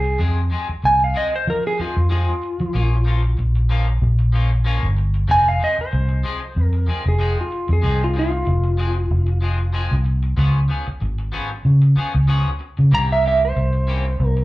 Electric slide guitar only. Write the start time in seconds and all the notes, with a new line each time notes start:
Already playing: G#4
0.85 G#5
1.04 F5
1.17 D#5
1.36 C5
1.50 A#4
1.67 G#4
1.81 F4
2.12 F4
5.31 G#5
5.48 F5
5.64 D#5
5.81 C5
6.64 A#4
7.08 G#4
7.41 F4
7.73 G#4
8.04 F4
8.19 F4
12.95 A#5
13.12 E5
13.28 E5
13.45 C5
14.27 A#4